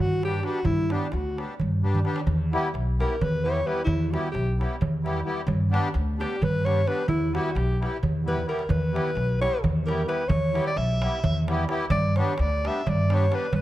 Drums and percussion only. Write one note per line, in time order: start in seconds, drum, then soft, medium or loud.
0.23 darbuka tek medium
0.43 darbuka tek medium
0.65 darbuka dum medium
0.78 darbuka tek soft
0.90 darbuka tek medium
1.01 darbuka tek soft
1.12 darbuka tek medium
1.26 darbuka tek soft
1.38 darbuka tek medium
1.60 darbuka dum medium
1.71 darbuka tek soft
1.84 darbuka dum medium
1.95 darbuka dum medium
2.05 darbuka tek medium
2.16 darbuka tek medium
2.27 darbuka dum medium
2.53 darbuka tek medium
2.75 darbuka tek medium
3.00 darbuka tek medium
3.21 darbuka dum medium
3.46 darbuka tek medium
3.67 darbuka tek medium
3.87 darbuka dum medium
4.14 darbuka tek medium
4.35 darbuka tek medium
4.61 darbuka tek medium
4.82 darbuka dum loud
5.06 darbuka tek medium
5.48 darbuka dum loud
5.74 darbuka tek medium
5.94 darbuka tek medium
6.21 darbuka tek medium
6.43 darbuka dum loud
6.66 darbuka tek medium
6.88 darbuka tek medium
7.08 darbuka dum medium
7.35 darbuka tek medium
7.56 darbuka tek medium
7.83 darbuka tek medium
8.03 darbuka dum medium
8.28 darbuka dum medium
8.38 darbuka dum medium
8.49 darbuka tek medium
8.59 darbuka tek medium
8.70 darbuka dum loud
8.96 darbuka tek medium
9.17 darbuka tek medium
9.42 darbuka tek medium
9.64 darbuka dum loud
9.88 darbuka tek medium
10.09 darbuka tek medium
10.30 darbuka dum loud
10.55 darbuka tek medium
10.77 darbuka tek medium
11.02 darbuka tek medium
11.24 darbuka dum loud
11.48 darbuka tek medium
11.69 darbuka tek medium
11.90 darbuka dum loud
12.16 darbuka tek medium
12.38 darbuka tek medium
12.65 darbuka tek medium
12.87 darbuka dum medium
13.10 darbuka tek medium
13.32 darbuka tek medium
13.53 darbuka dum loud